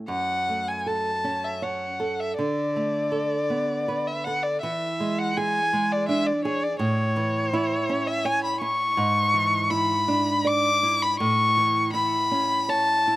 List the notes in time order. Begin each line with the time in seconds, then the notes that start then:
0.08 F#2 F#5
0.49 A3
0.68 G#5
0.86 A4 A5
1.24 C#4
1.44 E5
1.62 C#5 F#5
2.00 A4
2.20 E5
2.39 D3 D5
2.76 A3
3.12 A4
3.50 B3
3.88 B4
4.07 E5
4.25 A4 F#5
4.43 D5
4.62 E3 E5
5.00 G#3
5.19 F#5
5.37 G#4 G#5
5.73 G#3
5.92 D5
6.09 D4 E5
6.27 D5
6.45 G#4 C#5
6.64 D5
6.79 A2 C#5
7.16 E3
7.53 E4
7.89 C#4
8.08 E5
8.25 C#5 G#5
8.45 B5
8.61 E4 C#6
8.97 G#2
9.34 E3
9.70 E4 B5
10.08 D4
10.45 D5 D6
10.83 E4
11.03 B5
11.20 A2 C#6
11.57 E3
11.93 E4 B5
12.31 C#4
12.69 C#5 A5
13.08 E4